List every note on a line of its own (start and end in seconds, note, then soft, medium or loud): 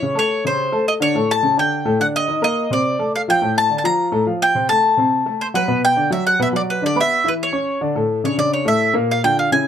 0.00 0.14 C#3 medium
0.00 0.14 C#4 medium
0.00 0.18 C#5 loud
0.00 0.14 C#5 medium
0.15 0.39 A3 medium
0.15 0.39 A4 medium
0.15 0.46 C#5 medium
0.15 0.39 A5 medium
0.45 0.68 C#3 medium
0.45 0.68 C#4 medium
0.45 0.88 C5 medium
0.45 0.68 C#5 medium
0.72 0.96 A3 medium
0.72 0.96 A4 medium
0.72 0.96 A5 medium
0.88 0.93 D#5 medium
1.00 1.12 D3 medium
1.00 1.12 D4 medium
1.00 1.31 C#5 loud
1.00 1.13 D5 medium
1.15 1.38 A2 medium
1.15 1.38 A3 medium
1.15 1.39 A4 medium
1.31 1.57 A5 loud
1.43 1.55 C#3 medium
1.43 1.55 C#4 medium
1.43 1.55 C#5 medium
1.57 1.81 D3 medium
1.57 1.81 D4 medium
1.57 1.81 D5 medium
1.57 2.00 G5 medium
1.85 1.97 A2 medium
1.85 1.97 A3 medium
1.85 1.97 A4 loud
1.99 2.23 D3 medium
1.99 2.23 D4 medium
1.99 2.23 D5 medium
1.99 2.06 F#5 medium
2.16 2.42 D#5 loud
2.28 2.40 D#3 medium
2.28 2.40 D#4 medium
2.28 2.40 D#5 medium
2.42 2.65 A#3 medium
2.42 2.66 A#4 medium
2.42 2.72 D#5 medium
2.42 2.66 A#5 medium
2.70 2.94 C3 medium
2.70 2.94 C4 medium
2.70 2.94 C5 medium
2.70 3.12 D5 medium
2.99 3.22 A3 medium
2.99 3.23 A4 medium
2.99 3.23 A5 medium
3.16 3.21 F5 medium
3.28 3.40 F3 medium
3.28 3.40 F4 medium
3.28 3.40 F5 medium
3.28 3.55 G5 loud
3.42 3.65 A2 medium
3.42 3.65 A3 medium
3.42 3.65 A4 medium
3.58 3.77 A5 loud
3.70 3.81 D3 medium
3.70 3.81 D4 medium
3.70 3.82 D5 medium
3.78 3.85 A5 medium
3.84 4.07 F3 medium
3.84 4.07 F4 medium
3.84 4.08 F5 medium
3.84 4.24 A#5 loud
4.12 4.24 A2 medium
4.12 4.24 A3 medium
4.12 4.24 A4 medium
4.26 4.50 F3 medium
4.26 4.50 F4 medium
4.26 4.50 F5 medium
4.42 4.68 G5 loud
4.55 4.67 C3 medium
4.55 4.67 C4 medium
4.55 4.67 C5 medium
4.69 4.92 A3 medium
4.69 4.93 A4 medium
4.69 5.42 A5 loud
4.69 4.93 A5 medium
4.97 5.21 C3 medium
4.97 5.21 C4 medium
4.97 5.21 C5 medium
5.26 5.49 A3 medium
5.26 5.49 A4 medium
5.26 5.50 A5 medium
5.41 5.46 C5 medium
5.54 5.66 F#3 medium
5.54 5.66 F#4 medium
5.54 5.81 B4 loud
5.54 5.66 F#5 medium
5.68 5.91 B2 medium
5.68 5.92 B3 medium
5.68 5.92 B4 medium
5.85 6.10 G5 loud
5.96 6.08 D3 medium
5.96 6.08 D4 medium
5.96 6.09 D5 medium
6.10 6.34 F#3 medium
6.10 6.34 F#4 medium
6.10 6.25 E5 medium
6.10 6.34 F#5 medium
6.27 6.41 F#5 medium
6.39 6.51 B2 medium
6.39 6.51 B3 medium
6.39 6.51 B4 medium
6.39 6.47 E5 medium
6.53 6.76 F#3 medium
6.53 6.76 F#4 medium
6.53 6.61 D5 medium
6.53 6.77 F#5 medium
6.70 6.84 B4 medium
6.82 6.94 D3 medium
6.82 6.94 D4 medium
6.82 6.94 D5 medium
6.86 6.99 D5 loud
6.96 7.19 B3 medium
6.96 7.19 B4 medium
6.96 7.20 B5 medium
7.01 7.27 E5 loud
7.24 7.48 E3 medium
7.24 7.48 E4 medium
7.24 7.33 B4 medium
7.24 7.48 E5 medium
7.43 7.80 C#5 medium
7.53 7.76 C#4 medium
7.53 7.76 C#5 medium
7.53 7.76 C#6 medium
7.81 7.93 D3 medium
7.81 7.93 D4 medium
7.81 7.93 D5 medium
7.95 8.19 A2 medium
7.95 8.19 A3 medium
7.95 8.19 A4 medium
8.24 8.35 C#3 medium
8.24 8.36 C#4 medium
8.24 8.36 D4 medium
8.24 8.38 C#5 medium
8.38 8.61 C#3 medium
8.38 8.61 C#4 medium
8.38 8.61 D4 medium
8.38 8.52 D5 loud
8.53 8.67 C#5 medium
8.65 8.89 A2 medium
8.65 8.89 A3 medium
8.65 8.89 A4 medium
8.65 8.94 E5 medium
8.93 9.17 A#2 medium
8.93 9.18 A#3 loud
8.93 9.18 A#4 medium
9.11 9.24 F5 medium
9.24 9.47 D3 medium
9.24 9.47 D4 medium
9.24 9.47 F4 medium
9.24 9.37 G5 loud
9.39 9.52 F5 medium
9.52 9.68 C#3 medium
9.52 9.68 C#4 medium
9.52 9.68 E4 medium
9.52 9.68 G#5 medium